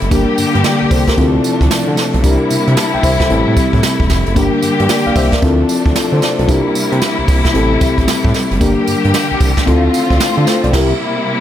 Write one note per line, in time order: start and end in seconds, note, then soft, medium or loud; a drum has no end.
0.00 0.10 F#1 medium
0.00 1.15 G3 medium
0.00 0.11 A3 medium
0.00 0.14 C4 medium
0.00 0.13 E4 medium
0.00 0.12 G4 medium
0.00 0.13 A4 medium
0.00 closed hi-hat medium
0.11 0.25 G1 loud
0.11 1.17 D3 medium
0.11 1.15 A#3 medium
0.11 1.17 A#3 medium
0.11 1.15 D4 medium
0.11 1.17 G4 medium
0.11 0.64 G4 medium
0.11 0.64 A#4 medium
0.11 kick loud
0.11 closed hi-hat medium
0.11 tambourine medium
0.38 0.45 G2 soft
0.38 closed hi-hat medium
0.38 tambourine medium
0.55 0.63 G2 medium
0.55 closed hi-hat medium
0.64 0.90 A#4 medium
0.64 0.90 D5 medium
0.64 snare loud
0.64 closed hi-hat medium
0.64 tambourine medium
0.82 0.86 C2 medium
0.91 1.05 C2 medium
0.91 1.07 A4 medium
0.91 1.07 C5 medium
0.91 kick loud
0.91 open hi-hat medium
0.91 tambourine medium
1.08 1.34 G4 medium
1.08 1.33 A#4 medium
1.08 kick medium
1.08 snare medium
1.08 closed hi-hat medium
1.17 1.40 D2 loud
1.17 4.33 C3 medium
1.17 2.23 F3 medium
1.17 2.23 A3 medium
1.17 2.21 C4 medium
1.17 2.23 D4 medium
1.17 2.22 E4 medium
1.17 2.22 F4 medium
1.17 2.23 A4 medium
1.17 kick loud
1.17 closed hi-hat medium
1.44 closed hi-hat medium
1.44 tambourine medium
1.61 1.69 D2 medium
1.61 kick medium
1.61 closed hi-hat medium
1.71 snare loud
1.71 closed hi-hat medium
1.71 tambourine loud
1.88 1.96 D3 medium
1.97 snare medium
1.97 open hi-hat medium
1.97 tambourine medium
2.14 2.22 B1 loud
2.14 closed hi-hat medium
2.23 2.38 C2 loud
2.23 4.34 G3 medium
2.23 3.29 A#3 medium
2.23 3.27 D4 medium
2.23 4.34 E4 medium
2.23 3.28 E4 medium
2.23 3.28 G4 medium
2.23 2.51 A#4 medium
2.23 kick loud
2.23 closed hi-hat medium
2.23 tambourine medium
2.50 2.57 C3 medium
2.50 closed hi-hat medium
2.50 tambourine medium
2.67 2.75 C3 loud
2.67 closed hi-hat medium
2.77 2.93 A5 medium
2.77 snare loud
2.77 closed hi-hat medium
2.77 tambourine medium
2.94 2.98 C2 soft
2.94 3.02 E5 medium
2.94 3.03 G5 medium
3.03 3.17 C2 medium
3.03 3.19 C5 medium
3.03 3.19 E5 medium
3.03 kick loud
3.03 open hi-hat medium
3.03 tambourine medium
3.20 3.30 A4 medium
3.20 3.46 C5 medium
3.20 kick medium
3.20 snare medium
3.20 closed hi-hat medium
3.29 3.44 A1 loud
3.29 4.35 A3 medium
3.29 4.34 C4 medium
3.29 4.34 E4 medium
3.29 4.34 G4 medium
3.29 4.35 A4 medium
3.29 closed hi-hat medium
3.47 3.55 A2 loud
3.57 kick loud
3.57 closed hi-hat medium
3.57 tambourine medium
3.73 3.81 A2 loud
3.73 kick medium
3.73 closed hi-hat medium
3.83 snare loud
3.83 closed hi-hat medium
3.83 tambourine loud
4.00 4.08 E1 medium
4.00 kick loud
4.10 4.23 F1 loud
4.10 kick medium
4.10 snare medium
4.10 open hi-hat medium
4.10 tambourine medium
4.26 4.35 F#1 medium
4.26 closed hi-hat medium
4.35 4.50 G1 loud
4.35 5.42 D3 medium
4.35 5.42 G3 medium
4.35 5.40 A#3 medium
4.35 5.42 A#3 medium
4.35 5.40 D4 medium
4.35 5.41 G4 medium
4.35 4.89 A#4 medium
4.35 kick loud
4.35 closed hi-hat medium
4.35 tambourine medium
4.62 4.70 G2 medium
4.62 closed hi-hat medium
4.62 tambourine medium
4.79 4.88 G2 loud
4.79 closed hi-hat medium
4.89 5.06 A#4 medium
4.89 5.05 D5 medium
4.89 snare loud
4.89 closed hi-hat medium
4.89 tambourine loud
5.06 5.10 C2 medium
5.06 5.16 D5 medium
5.06 5.16 F5 medium
5.16 5.30 C2 medium
5.16 5.32 C5 medium
5.16 5.32 E5 medium
5.16 kick loud
5.16 open hi-hat medium
5.16 tambourine medium
5.32 5.58 A#4 medium
5.32 5.58 D5 medium
5.32 kick medium
5.32 snare medium
5.32 closed hi-hat medium
5.42 5.64 D2 loud
5.42 8.58 C3 medium
5.42 6.48 F3 medium
5.42 6.48 A3 medium
5.42 6.46 C4 medium
5.42 6.48 D4 medium
5.42 5.94 E4 medium
5.42 5.95 F4 medium
5.42 5.95 A4 medium
5.42 kick loud
5.42 closed hi-hat medium
5.69 closed hi-hat medium
5.69 tambourine medium
5.86 5.94 D2 loud
5.86 kick medium
5.86 closed hi-hat medium
5.96 6.12 F4 medium
5.96 6.12 A4 medium
5.96 snare loud
5.96 closed hi-hat medium
5.96 tambourine loud
6.12 6.20 D3 medium
6.12 6.22 A4 medium
6.12 6.22 C5 medium
6.22 6.38 D5 medium
6.22 snare medium
6.22 open hi-hat medium
6.22 tambourine medium
6.39 6.47 B1 medium
6.39 6.65 F4 medium
6.39 6.64 A4 medium
6.39 closed hi-hat medium
6.47 6.62 C2 loud
6.47 9.64 G3 medium
6.47 7.54 A#3 medium
6.47 7.52 D4 medium
6.47 7.53 E4 medium
6.47 8.59 E4 medium
6.47 7.53 G4 medium
6.47 7.53 A#4 medium
6.47 kick loud
6.47 closed hi-hat medium
6.47 tambourine medium
6.75 6.82 C3 soft
6.75 closed hi-hat medium
6.75 tambourine medium
6.92 7.00 C3 loud
6.92 closed hi-hat medium
7.02 snare loud
7.02 closed hi-hat medium
7.02 tambourine medium
7.19 7.23 C2 soft
7.28 7.42 C2 medium
7.28 kick loud
7.28 open hi-hat medium
7.28 tambourine medium
7.45 kick medium
7.45 snare medium
7.45 closed hi-hat medium
7.54 7.77 A1 loud
7.54 8.60 A3 medium
7.54 8.58 C4 medium
7.54 8.59 E4 medium
7.54 8.59 G4 medium
7.54 8.60 A4 medium
7.54 closed hi-hat medium
7.81 kick loud
7.81 closed hi-hat medium
7.81 tambourine medium
7.98 8.06 A1 medium
7.98 kick medium
7.98 closed hi-hat medium
8.08 snare loud
8.08 closed hi-hat medium
8.08 tambourine loud
8.24 8.33 A2 loud
8.24 kick loud
8.34 snare medium
8.34 open hi-hat medium
8.34 tambourine medium
8.51 8.59 F#1 medium
8.51 closed hi-hat medium
8.60 8.75 G1 medium
8.60 10.71 D3 medium
8.60 9.64 A#3 medium
8.60 9.66 A#3 medium
8.60 9.65 D4 medium
8.60 9.66 G4 medium
8.60 9.65 G4 medium
8.60 9.66 A#4 medium
8.60 kick loud
8.60 closed hi-hat medium
8.60 tambourine medium
8.87 8.95 G2 soft
8.87 closed hi-hat medium
8.87 tambourine medium
9.04 9.13 G2 loud
9.04 closed hi-hat medium
9.14 snare loud
9.14 closed hi-hat medium
9.14 tambourine loud
9.31 9.35 C2 medium
9.41 9.54 C2 loud
9.41 kick loud
9.41 open hi-hat medium
9.41 tambourine medium
9.57 kick medium
9.57 snare medium
9.57 closed hi-hat medium
9.66 9.89 D2 loud
9.66 10.72 A3 medium
9.66 10.71 C4 medium
9.66 10.72 C4 medium
9.66 9.93 E4 medium
9.66 10.72 F4 medium
9.66 9.93 F4 medium
9.66 9.94 A4 medium
9.66 kick loud
9.66 closed hi-hat medium
9.94 closed hi-hat medium
9.94 tambourine medium
10.10 10.19 D2 medium
10.10 kick medium
10.10 closed hi-hat medium
10.20 snare loud
10.20 closed hi-hat medium
10.20 tambourine loud
10.37 10.45 D3 medium
10.37 10.47 F4 medium
10.37 10.46 A4 medium
10.47 10.63 A4 medium
10.47 10.63 C5 medium
10.47 snare medium
10.47 open hi-hat medium
10.47 tambourine medium
10.64 10.72 B1 medium
10.64 10.73 D5 medium
10.64 closed hi-hat medium
10.73 10.93 C2 loud
10.73 11.40 C3 medium
10.73 11.40 G3 medium
10.73 11.40 A#3 medium
10.73 10.92 E4 loud
10.73 11.40 E4 medium
10.73 10.93 G4 loud
10.73 10.93 A#4 loud
10.73 kick loud
10.73 snare loud
10.73 crash medium